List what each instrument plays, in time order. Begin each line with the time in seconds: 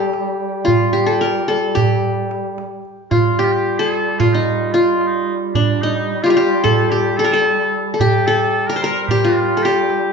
Already playing: duduk G3, qanun G4 A4
0.13 darbuka tek
0.65 qanun F4, darbuka dum
0.93 qanun G4, darbuka ka
1.06 qanun A4
1.21 qanun A#4
1.48 qanun A4, darbuka tek
1.75 qanun G4, darbuka dum
2.04 darbuka ka
2.31 darbuka tek
2.58 darbuka tek
2.85 darbuka ka
3.11 duduk G3, qanun F4, oboe F4, darbuka dum
3.39 oboe G4, qanun G4
3.44 oboe F4
3.51 oboe G4
3.78 oboe G#4, qanun A4
3.93 oboe A4, darbuka tek
4.19 oboe F4, qanun F4, darbuka dum
4.33 oboe D#4, qanun D#4
4.73 oboe F4, qanun F4, darbuka tek
5.01 darbuka tek
5.07 oboe D#4
5.54 oboe D4, qanun D4, darbuka dum
5.81 oboe D#4, qanun D#4
6.23 oboe F4, qanun F4 G4
6.30 oboe F4, qanun F4
6.36 oboe G4, qanun G4, darbuka tek
6.64 qanun A4, oboe A4, darbuka dum
6.90 oboe G4, qanun G4
7.17 oboe A4, qanun A4, darbuka tek
7.24 qanun A#4
7.31 oboe A4, qanun A4
7.46 darbuka tek
7.94 qanun A4
8.00 duduk G3, oboe G4, qanun G4, darbuka dum
8.26 oboe A4, qanun A4
8.67 oboe A#4, qanun A#4
8.76 qanun C5
8.81 oboe A#4, qanun A#4, darbuka tek
9.07 oboe G4, qanun G4, darbuka dum
9.22 oboe F4, qanun F4
9.57 qanun A4
9.62 oboe G4, qanun G4, darbuka tek
9.90 darbuka tek